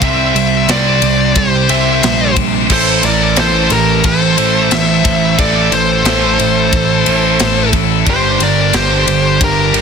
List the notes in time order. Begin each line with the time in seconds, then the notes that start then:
0.01 C2 C3 G3 C4 G4 C5 E5, kick, ride
0.09 G4 C5
0.16 G4 C5
0.24 G4 C5
0.32 C2 C3 G3 G4 C5, ride
0.40 G4 C5
0.47 G4 C5
0.55 G4 C5
0.63 G4 C5
0.68 C2 C3 G3 C4 G4 C5 D5, snare, ride
0.78 G4 C5
0.86 G4 C5
0.94 G4 C5
1.00 C2 C3 G3 G4 C5, ride
1.09 G4 C5
1.16 G4 C5
1.24 G4 C5
1.33 C2 C3 G3 G4 C5, kick, ride
1.37 G4 C5
1.46 G4 C5
1.55 G4 C5
1.63 G4 C5
1.69 C2 C3 G3 C4 G4 C5 E5, ride
1.78 G4 C5
1.86 G4 C5
1.92 G4 C5
2.00 A#1 C3 G3 G4 C5, snare, ride
2.07 G4 C5
2.16 G4 C5
2.24 G4 C5
2.31 G4 C5
2.36 C3 G3 G4, kick, ride
2.40 C5
2.47 G4 C5
2.54 G4 C5
2.63 G4 C5
2.69 A1 A2 E3 A3 E4 A4 C5, kick, crash
2.78 E4 A4
2.86 E4 A4
2.93 E4 A4
3.01 A1 A2 E3 E4 A4 D5, ride
3.07 E4 A4 A#4
3.16 E4 A4
3.23 E4 A4
3.31 E4 A4
3.36 A1 A2 E3 A3 E4 A4 C5, snare, ride
3.47 E4 A4
3.53 E4 A4
3.63 E4 A4
3.70 A1 A2 E3 E4 A4 A#4, ride
3.75 E4 G4 A4
3.85 E4 A4
3.92 E4 A4
4.00 A2 E4 A4, kick, ride
4.05 A1 E3 E4 A4 C5
4.15 E4 A4
4.22 E4 A4
4.30 E4 A4
4.37 A1 A2 E3 A3 E4 A4, ride
4.46 E4 A4
4.54 E4 A4
4.62 E4 A4
4.69 A1 A2 E3 E4 A4 E5, snare, ride
4.73 E4 C5
4.77 A4
4.84 E4 A4
4.91 E4 A4
4.99 E4 A4
5.04 A1 A2 E3 E4, kick, ride
5.08 A4
5.15 E4 A4
5.21 E4 A4
5.30 E4 A4
5.38 A1 A2 E3 A3 E4 A4 D5, kick, ride
5.46 E4 A4
5.53 E4 A4
5.62 E4 A4
5.69 A1 A2 E3 E4 A4, ride
5.73 C5
5.77 E4 A4
5.85 E4 A4
5.92 E4 A4
6.01 A1 A2 E4 A4
6.05 E3 A3 E4 A4, snare, ride
6.15 E4 A4
6.23 E4 A4
6.31 E4 A4
6.38 A1 A2 E3 E4 A4, ride
6.46 E4 A4
6.53 E4 A4
6.60 E4 A4
6.68 A2 E3 E4 A4
6.73 A1 E4, kick, ride
6.77 A4
6.84 E4 A4
6.92 E4 A4
7.01 E4 A4
7.06 A1 A2 E3 A3 E4 A4, ride
7.14 E4 A4
7.23 E4 A4
7.30 E4 A4
7.38 A1 A2 E3 E4 A4, snare, ride
7.44 E4 A4
7.54 E4 A4
7.61 E4 A4
7.69 A2 E4 A4
7.73 E3 E4 A4, kick, ride
7.83 E4 A4
7.91 E4 A4
8.00 E4 A4
8.05 G1 G2 D3 G3 D4 G4, kick, ride
8.10 D4 C5
8.16 G4
8.21 D4 G4
8.29 D4 G4
8.38 G1 G2 D3 D4 G4, ride
8.43 D4 G4 A#4 D5
8.51 D4 G4
8.59 D4 G4
8.68 D4 G4
8.73 G1 G2 D3 G3 D4 G4 C5, snare, ride
8.83 D4 G4
8.91 D4 G4
8.98 D4 G4
9.06 G1 G2 D3 D4 G4, ride
9.14 D4 G4
9.22 D4 G4
9.29 D4 G4
9.36 D4 G4
9.41 G1 G2 D3 D4 G4 A#4, kick, ride
9.52 D4 G4
9.59 D4 G4
9.67 D4 G4
9.73 G1 G2 D3 G3 D4 G4, ride